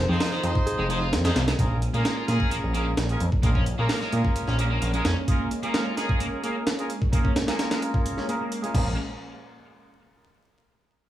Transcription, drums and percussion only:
0.20 snare, open hi-hat
0.32 snare
0.44 closed hi-hat
0.55 kick
0.67 closed hi-hat
0.90 closed hi-hat
1.13 snare, closed hi-hat
1.25 snare, closed hi-hat
1.36 snare, closed hi-hat
1.48 snare, closed hi-hat
1.59 kick, closed hi-hat
1.82 closed hi-hat
1.94 closed hi-hat
2.05 snare, closed hi-hat
2.28 snare, closed hi-hat
2.40 kick
2.51 closed hi-hat
2.74 closed hi-hat
2.97 snare, closed hi-hat
3.09 closed hi-hat
3.20 closed hi-hat
3.32 kick
3.43 kick, closed hi-hat
3.55 kick
3.66 closed hi-hat
3.89 snare, open hi-hat
4.01 snare
4.12 closed hi-hat
4.25 kick
4.36 closed hi-hat
4.47 snare
4.59 closed hi-hat
4.82 closed hi-hat
4.94 closed hi-hat
5.05 snare, closed hi-hat
5.28 kick, closed hi-hat
5.51 closed hi-hat
5.63 closed hi-hat
5.74 snare, closed hi-hat
5.97 snare, closed hi-hat
6.09 kick
6.20 closed hi-hat
6.44 closed hi-hat
6.67 snare, closed hi-hat
6.79 closed hi-hat
6.90 closed hi-hat
7.02 kick
7.13 kick, closed hi-hat
7.25 kick
7.36 snare, closed hi-hat
7.48 snare, closed hi-hat
7.59 snare, closed hi-hat
7.71 snare, closed hi-hat
7.82 closed hi-hat
7.94 kick
8.06 closed hi-hat
8.18 snare
8.29 closed hi-hat
8.52 closed hi-hat
8.64 closed hi-hat
8.75 kick, crash

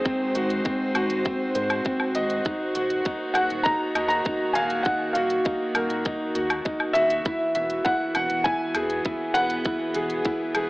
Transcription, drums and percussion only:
0.05 kick, closed hi-hat
0.35 closed hi-hat
0.50 closed hi-hat
0.65 kick, closed hi-hat
0.95 closed hi-hat, low woodblock
1.10 closed hi-hat
1.25 kick, closed hi-hat
1.55 closed hi-hat
1.70 closed hi-hat, low woodblock
1.85 kick, closed hi-hat
2.00 low woodblock
2.15 closed hi-hat
2.30 closed hi-hat
2.45 kick, closed hi-hat
2.75 closed hi-hat
2.90 closed hi-hat
3.05 kick, closed hi-hat
3.35 closed hi-hat, low woodblock
3.50 closed hi-hat
3.65 kick, closed hi-hat
3.95 closed hi-hat, low woodblock
4.10 closed hi-hat
4.25 kick, closed hi-hat
4.55 closed hi-hat
4.70 closed hi-hat
4.85 kick, closed hi-hat
5.15 closed hi-hat
5.30 closed hi-hat
5.45 kick, closed hi-hat
5.75 closed hi-hat, low woodblock
5.90 closed hi-hat
6.05 kick, closed hi-hat
6.35 closed hi-hat
6.50 closed hi-hat, low woodblock
6.65 kick, closed hi-hat
6.80 low woodblock
6.95 closed hi-hat
7.10 closed hi-hat
7.25 kick, closed hi-hat
7.55 closed hi-hat
7.70 closed hi-hat
7.85 kick, closed hi-hat
8.15 closed hi-hat, low woodblock
8.30 closed hi-hat
8.45 kick, closed hi-hat
8.75 closed hi-hat, low woodblock
8.90 closed hi-hat
9.05 kick, closed hi-hat
9.35 closed hi-hat
9.50 closed hi-hat
9.65 kick, closed hi-hat
9.94 closed hi-hat
10.10 closed hi-hat
10.25 kick, closed hi-hat
10.55 closed hi-hat, low woodblock

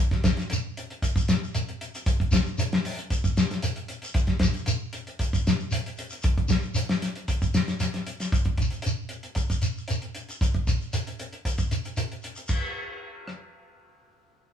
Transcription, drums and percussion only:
0.11 kick, snare, closed hi-hat
0.24 kick, snare, closed hi-hat, shekere
0.37 snare, closed hi-hat, shekere
0.50 closed hi-hat, shekere
0.77 closed hi-hat, shekere
0.90 closed hi-hat
1.02 kick, closed hi-hat, shekere
1.16 kick, closed hi-hat, shekere
1.28 snare, closed hi-hat, shekere
1.44 shekere
1.55 closed hi-hat, shekere
1.69 closed hi-hat
1.81 closed hi-hat, shekere
1.95 closed hi-hat, shekere
2.06 kick, closed hi-hat, shekere
2.20 kick, closed hi-hat
2.31 kick, snare, closed hi-hat, shekere
2.46 shekere
2.58 closed hi-hat, shekere
2.73 snare, closed hi-hat
2.85 open hi-hat, shekere
2.99 closed hi-hat
3.10 kick, closed hi-hat, shekere
3.24 kick, closed hi-hat, shekere
3.37 snare, closed hi-hat, shekere
3.50 snare, closed hi-hat, shekere
3.62 closed hi-hat, shekere
3.76 closed hi-hat
3.88 closed hi-hat, shekere
4.02 closed hi-hat, shekere
4.14 kick, closed hi-hat, shekere
4.27 kick, snare, closed hi-hat
4.39 kick, snare, closed hi-hat, shekere
4.53 closed hi-hat, shekere
4.66 closed hi-hat, shekere
4.93 closed hi-hat, shekere
5.07 closed hi-hat
5.19 kick, closed hi-hat, shekere
5.33 kick, closed hi-hat, shekere
5.47 snare, closed hi-hat, shekere
5.60 shekere
5.71 closed hi-hat, shekere
5.86 closed hi-hat
5.97 closed hi-hat, shekere
6.10 closed hi-hat, shekere
6.22 kick, closed hi-hat, shekere
6.38 kick, closed hi-hat
6.48 kick, snare, closed hi-hat, shekere
6.62 shekere
6.74 closed hi-hat, shekere
6.89 snare, closed hi-hat
7.02 snare, closed hi-hat, shekere
7.15 closed hi-hat
7.28 kick, closed hi-hat, shekere
7.42 kick, closed hi-hat, shekere
7.54 snare, closed hi-hat, shekere
7.67 snare, closed hi-hat, shekere
7.80 snare, closed hi-hat, shekere
7.94 snare, closed hi-hat
8.06 closed hi-hat, shekere
8.20 snare, closed hi-hat, shekere
8.32 kick, closed hi-hat, shekere
8.45 kick, closed hi-hat
8.57 kick, closed hi-hat, shekere
8.70 closed hi-hat, shekere
8.82 closed hi-hat
8.86 shekere
9.09 closed hi-hat, shekere
9.23 closed hi-hat
9.35 kick, closed hi-hat, shekere
9.50 kick, closed hi-hat, shekere
9.62 closed hi-hat, shekere
9.78 shekere
9.88 closed hi-hat, shekere
10.02 closed hi-hat
10.15 closed hi-hat, shekere
10.29 closed hi-hat, shekere
10.41 kick, closed hi-hat, shekere
10.54 kick, closed hi-hat
10.67 kick, closed hi-hat, shekere
10.81 shekere
10.93 closed hi-hat, shekere
11.07 closed hi-hat
11.19 closed hi-hat, shekere
11.33 closed hi-hat
11.45 kick, closed hi-hat, shekere
11.58 kick, closed hi-hat, shekere
11.71 closed hi-hat, shekere
11.85 closed hi-hat, shekere
11.97 closed hi-hat, shekere
12.12 closed hi-hat
12.22 closed hi-hat, shekere
12.35 closed hi-hat, shekere
12.47 kick, crash, shekere
13.27 cross-stick

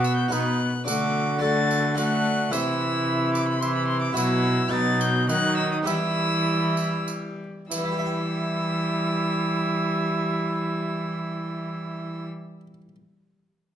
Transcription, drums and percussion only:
0.04 tambourine
0.32 tambourine
0.88 tambourine
1.71 tambourine
1.98 tambourine
2.53 tambourine
3.35 tambourine
3.62 tambourine
4.17 tambourine
5.01 tambourine
5.29 tambourine
5.87 tambourine
6.77 tambourine
7.08 tambourine
7.71 tambourine

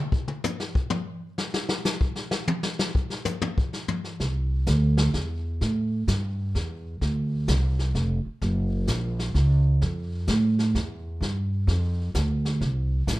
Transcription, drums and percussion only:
0.12 kick
0.28 mid tom
0.44 floor tom, hi-hat pedal
0.60 snare
0.75 kick
0.90 floor tom
1.38 snare
1.54 snare
1.69 snare
1.85 snare, hi-hat pedal
2.01 kick
2.15 snare
2.31 snare
2.48 high tom
2.63 snare
2.79 snare
2.95 kick
3.10 snare
3.25 floor tom, hi-hat pedal
3.42 floor tom
3.58 kick
3.73 snare
3.88 floor tom
4.04 snare
4.20 brush sweep, kick, snare
4.66 kick, snare, hi-hat pedal
4.97 snare
5.14 kick, snare
5.61 brush sweep, kick, snare
6.08 kick, snare, hi-hat pedal
6.55 kick, snare
7.01 brush sweep, kick, snare
7.48 kick, snare, hi-hat pedal
7.79 snare
7.95 kick, snare
8.42 brush sweep, kick, snare
8.87 kick, snare, hi-hat pedal
9.19 snare
9.35 kick, snare
9.81 brush sweep, kick, snare
10.27 kick, snare, hi-hat pedal
10.59 snare
10.75 kick, snare
11.21 brush sweep, kick, snare
11.68 kick, snare
12.14 kick, snare, hi-hat pedal
12.45 snare
12.61 brush sweep, kick, snare
13.07 kick, snare, hi-hat pedal

